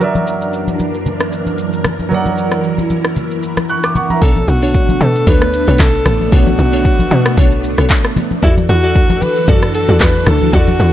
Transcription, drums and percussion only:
0.01 shaker medium
0.15 high conga medium
0.15 shaker medium
0.27 shaker medium
0.41 shaker soft
0.53 shaker medium
0.68 high conga medium
0.68 shaker medium
0.80 high conga medium
0.80 shaker medium
0.94 shaker medium
1.06 low conga medium
1.06 shaker medium
1.20 cross-stick medium
1.20 shaker soft
1.32 shaker medium
1.46 high conga medium
1.46 shaker medium
1.58 shaker medium
1.73 shaker medium
1.84 cross-stick loud
1.84 high conga medium
1.84 low conga medium
1.84 shaker loud
1.99 high conga medium
1.99 shaker soft
2.11 low conga medium
2.11 shaker medium
2.26 high conga medium
2.26 shaker medium
2.38 shaker medium
2.52 cross-stick medium
2.52 shaker medium
2.64 shaker medium
2.78 high conga medium
2.78 shaker medium
2.90 high conga medium
2.90 shaker medium
3.05 cross-stick medium
3.05 shaker medium
3.17 low conga medium
3.17 shaker medium
3.31 shaker soft
3.43 shaker medium
3.57 cross-stick medium
3.57 high conga medium
3.57 shaker medium
3.69 shaker medium
3.84 cross-stick medium
3.84 shaker medium
3.95 high conga medium
3.95 low conga medium
3.95 shaker loud
4.10 high conga medium
4.10 shaker soft
4.22 kick loud
4.22 shaker medium
4.36 high conga medium
4.36 shaker medium
4.48 open hi-hat medium
4.48 shaker loud
4.63 shaker medium
4.74 kick medium
4.74 shaker medium
4.89 high conga medium
4.89 shaker medium
5.01 open hi-hat soft
5.01 high conga medium
5.01 shaker medium
5.15 shaker medium
5.27 kick loud
5.27 low conga medium
5.27 shaker medium
5.41 cross-stick loud
5.41 shaker soft
5.53 open hi-hat medium
5.53 shaker loud
5.68 shaker medium
5.79 kick medium
5.79 clap medium
5.79 shaker medium
5.94 shaker medium
6.06 cross-stick loud
6.06 open hi-hat medium
6.06 high conga medium
6.06 low conga medium
6.06 shaker loud
6.21 high conga medium
6.21 shaker soft
6.32 kick loud
6.32 shaker medium
6.47 high conga medium
6.47 shaker medium
6.59 open hi-hat medium
6.59 shaker loud
6.73 shaker medium
6.85 kick medium
6.85 shaker medium
6.99 high conga medium
6.99 shaker medium
7.11 open hi-hat soft
7.11 high conga medium
7.11 shaker medium
7.26 cross-stick loud
7.26 shaker medium
7.38 kick loud
7.38 low conga medium
7.38 shaker medium
7.52 shaker soft
7.64 open hi-hat medium
7.64 shaker loud
7.78 cross-stick medium
7.78 shaker medium
7.90 kick medium
7.90 clap medium
7.90 shaker medium
8.04 cross-stick medium
8.04 shaker medium
8.16 open hi-hat medium
8.16 high conga medium
8.16 low conga medium
8.16 shaker loud
8.31 high conga medium
8.31 shaker medium
8.43 kick loud
8.43 shaker medium
8.57 high conga medium
8.57 shaker medium
8.69 open hi-hat medium
8.69 shaker loud
8.83 shaker medium
8.95 kick medium
8.95 shaker medium
9.10 high conga medium
9.10 shaker medium
9.22 open hi-hat soft
9.22 high conga medium
9.22 shaker medium
9.36 shaker medium
9.48 kick loud
9.48 low conga medium
9.48 shaker medium
9.62 cross-stick medium
9.62 shaker soft
9.74 open hi-hat medium
9.74 shaker loud
9.89 shaker medium
10.00 kick medium
10.00 clap loud
10.00 shaker medium
10.15 shaker medium
10.26 cross-stick loud
10.26 open hi-hat medium
10.26 high conga medium
10.26 low conga medium
10.26 shaker loud
10.41 high conga medium
10.41 shaker medium
10.53 kick loud
10.53 shaker medium
10.68 high conga medium
10.68 shaker medium
10.80 open hi-hat medium
10.80 shaker loud

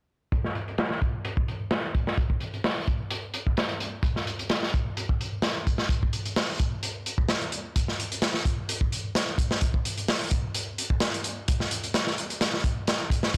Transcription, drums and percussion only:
0.32 kick medium
0.32 closed hi-hat medium
0.44 snare soft
0.55 closed hi-hat medium
0.68 closed hi-hat soft
0.78 snare loud
0.78 closed hi-hat medium
0.91 snare soft
1.02 kick medium
1.02 closed hi-hat medium
1.25 closed hi-hat medium
1.37 kick medium
1.48 closed hi-hat medium
1.71 snare loud
1.71 closed hi-hat medium
1.95 kick medium
1.95 closed hi-hat medium
2.07 snare medium
2.17 kick loud
2.17 closed hi-hat medium
2.30 kick medium
2.40 closed hi-hat medium
2.54 closed hi-hat soft
2.64 snare loud
2.64 open hi-hat medium
2.87 kick medium
2.87 closed hi-hat medium
3.10 closed hi-hat medium
3.34 closed hi-hat medium
3.47 kick medium
3.57 snare loud
3.57 closed hi-hat medium
3.69 closed hi-hat soft
3.80 closed hi-hat medium
4.03 kick loud
4.03 closed hi-hat medium
4.16 snare soft
4.27 closed hi-hat medium
4.39 closed hi-hat soft
4.49 snare loud
4.49 closed hi-hat medium
4.63 snare soft
4.74 kick loud
4.74 closed hi-hat medium
4.97 closed hi-hat medium
5.09 kick medium
5.21 closed hi-hat medium
5.42 snare loud
5.42 closed hi-hat medium
5.67 kick medium
5.67 closed hi-hat medium
5.78 snare medium
5.89 kick loud
5.89 closed hi-hat medium
6.03 kick medium
6.13 closed hi-hat medium
6.25 closed hi-hat soft
6.36 snare loud
6.36 open hi-hat medium
6.60 kick medium
6.60 closed hi-hat medium
6.83 closed hi-hat medium
7.06 closed hi-hat medium
7.18 kick loud
7.29 snare loud
7.29 closed hi-hat medium
7.42 closed hi-hat soft
7.52 closed hi-hat medium
7.76 kick loud
7.76 closed hi-hat medium
7.88 snare soft
8.00 closed hi-hat medium
8.12 closed hi-hat soft
8.22 snare loud
8.22 closed hi-hat medium
8.34 snare medium
8.45 kick medium
8.45 closed hi-hat medium
8.69 closed hi-hat medium
8.81 kick medium
8.92 closed hi-hat medium
9.15 snare loud
9.15 closed hi-hat medium
9.38 kick loud
9.38 closed hi-hat medium
9.51 snare medium
9.61 kick loud
9.61 closed hi-hat medium
9.74 kick medium
9.85 closed hi-hat medium
9.97 closed hi-hat soft
10.08 snare loud
10.08 open hi-hat medium
10.31 kick loud
10.31 closed hi-hat medium
10.55 closed hi-hat medium
10.78 closed hi-hat medium
10.90 kick medium
11.00 snare loud
11.00 closed hi-hat medium
11.14 closed hi-hat soft
11.24 closed hi-hat medium
11.48 kick loud
11.48 closed hi-hat medium
11.60 snare soft
11.71 closed hi-hat medium
11.84 closed hi-hat soft
11.94 snare loud
11.94 closed hi-hat medium
12.07 snare soft
12.18 closed hi-hat medium
12.30 closed hi-hat soft
12.41 snare loud
12.41 closed hi-hat medium
12.54 snare soft
12.64 kick medium
12.64 closed hi-hat medium
12.87 snare loud
12.87 closed hi-hat medium
13.10 kick medium
13.10 closed hi-hat medium
13.23 snare medium

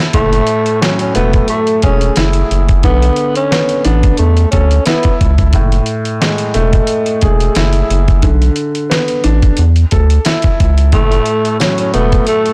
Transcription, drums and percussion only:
0.00 snare medium
0.13 kick loud
0.13 closed hi-hat medium
0.33 closed hi-hat medium
0.47 closed hi-hat medium
0.66 closed hi-hat medium
0.82 snare loud
0.82 closed hi-hat medium
0.99 closed hi-hat medium
1.15 closed hi-hat medium
1.33 kick medium
1.33 closed hi-hat medium
1.48 closed hi-hat medium
1.67 closed hi-hat soft
1.82 kick medium
1.82 closed hi-hat medium
2.01 closed hi-hat medium
2.16 snare loud
2.16 closed hi-hat loud
2.33 closed hi-hat medium
2.51 closed hi-hat medium
2.69 kick medium
2.69 closed hi-hat medium
2.83 kick loud
2.83 closed hi-hat medium
3.02 closed hi-hat medium
3.16 closed hi-hat medium
3.35 closed hi-hat medium
3.52 snare loud
3.52 closed hi-hat medium
3.69 closed hi-hat medium
3.85 closed hi-hat medium
4.03 kick medium
4.03 closed hi-hat medium
4.17 closed hi-hat medium
4.37 closed hi-hat medium
4.52 kick medium
4.52 closed hi-hat medium
4.71 closed hi-hat medium
4.86 snare loud
4.86 closed hi-hat loud
5.03 kick medium
5.03 closed hi-hat medium
5.21 kick loud
5.21 closed hi-hat medium
5.38 kick medium
5.38 closed hi-hat medium
5.53 kick loud
5.53 closed hi-hat medium
5.72 closed hi-hat medium
5.86 closed hi-hat medium
6.05 closed hi-hat medium
6.22 snare loud
6.22 closed hi-hat medium
6.38 closed hi-hat medium
6.54 closed hi-hat medium
6.73 kick medium
6.73 closed hi-hat medium
6.87 closed hi-hat medium
7.06 closed hi-hat medium
7.21 kick medium
7.21 closed hi-hat medium
7.40 closed hi-hat medium
7.55 snare loud
7.55 closed hi-hat loud
7.73 closed hi-hat medium
7.90 closed hi-hat medium
8.08 kick medium
8.08 closed hi-hat medium
8.22 kick loud
8.22 closed hi-hat medium
8.42 closed hi-hat medium
8.56 closed hi-hat medium
8.75 closed hi-hat medium
8.91 snare loud
8.91 closed hi-hat medium
9.08 closed hi-hat medium
9.24 closed hi-hat medium
9.42 kick medium
9.42 closed hi-hat medium
9.57 closed hi-hat medium
9.76 closed hi-hat medium
9.91 kick medium
9.91 closed hi-hat medium
10.10 closed hi-hat medium
10.25 snare loud
10.25 closed hi-hat loud
10.42 kick loud
10.42 closed hi-hat medium
10.60 kick loud
10.60 closed hi-hat medium
10.78 closed hi-hat medium
10.92 kick loud
10.92 closed hi-hat medium
11.12 closed hi-hat medium
11.26 closed hi-hat medium
11.45 closed hi-hat medium
11.60 snare loud
11.60 closed hi-hat medium
11.60 tambourine medium
11.78 closed hi-hat medium
11.94 closed hi-hat medium
12.12 kick medium
12.12 closed hi-hat medium
12.27 closed hi-hat medium
12.46 closed hi-hat medium

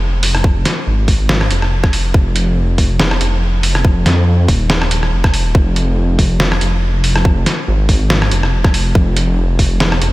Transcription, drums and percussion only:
0.23 open hi-hat medium
0.35 cross-stick medium
0.44 kick loud
0.65 snare medium
0.65 closed hi-hat medium
1.08 kick medium
1.08 open hi-hat medium
1.29 snare loud
1.41 cross-stick medium
1.51 closed hi-hat medium
1.62 cross-stick medium
1.84 kick loud
1.84 cross-stick medium
1.93 open hi-hat medium
2.14 kick loud
2.36 closed hi-hat medium
2.78 kick medium
2.78 open hi-hat medium
3.00 snare loud
3.11 cross-stick medium
3.21 closed hi-hat medium
3.63 open hi-hat medium
3.75 cross-stick medium
3.85 kick loud
4.06 snare medium
4.06 closed hi-hat medium
4.48 kick medium
4.48 open hi-hat medium
4.70 snare loud
4.82 cross-stick medium
4.91 closed hi-hat medium
5.03 cross-stick medium
5.24 kick loud
5.24 cross-stick medium
5.34 open hi-hat medium
5.55 kick loud
5.76 closed hi-hat medium
6.19 kick medium
6.19 open hi-hat medium
6.40 snare loud
6.52 cross-stick medium
6.61 closed hi-hat medium
7.04 open hi-hat medium
7.16 cross-stick medium
7.25 kick loud
7.46 snare medium
7.46 closed hi-hat medium
7.89 kick medium
7.89 open hi-hat medium
8.10 snare loud
8.22 cross-stick medium
8.31 closed hi-hat medium
8.43 cross-stick medium
8.64 kick loud
8.64 cross-stick medium
8.74 open hi-hat medium
8.95 kick loud
9.17 closed hi-hat medium
9.59 kick medium
9.59 open hi-hat medium
9.80 snare loud
9.92 cross-stick medium
10.02 closed hi-hat medium

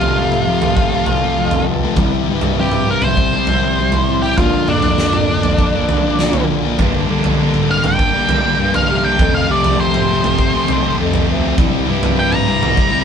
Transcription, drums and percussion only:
0.01 floor tom medium
0.32 mid tom medium
0.62 floor tom medium
0.62 mid tom medium
0.77 kick loud
1.06 floor tom medium
1.51 floor tom medium
1.96 kick loud
1.96 floor tom medium
2.41 floor tom medium
2.72 mid tom medium
3.02 floor tom medium
3.02 mid tom medium
3.17 kick loud
3.47 floor tom medium
3.92 floor tom medium
4.38 kick loud
4.38 floor tom medium
4.68 mid tom medium
4.83 floor tom medium
4.98 snare medium
5.13 mid tom medium
5.43 floor tom medium
5.59 kick loud
5.89 floor tom medium
6.19 snare medium
6.33 floor tom medium
6.79 kick loud
6.79 floor tom medium
7.24 floor tom medium
7.54 mid tom medium
7.84 floor tom medium
7.84 mid tom medium
7.99 kick loud
8.29 floor tom medium
8.74 floor tom medium
9.19 kick loud
9.19 floor tom medium
9.64 floor tom medium
9.94 mid tom medium
10.24 floor tom medium
10.24 mid tom medium
10.39 kick loud
10.68 floor tom medium
11.14 floor tom medium
11.58 kick loud
11.58 floor tom medium
12.03 floor tom medium
12.32 mid tom medium
12.63 floor tom medium
12.63 mid tom medium
12.77 kick loud

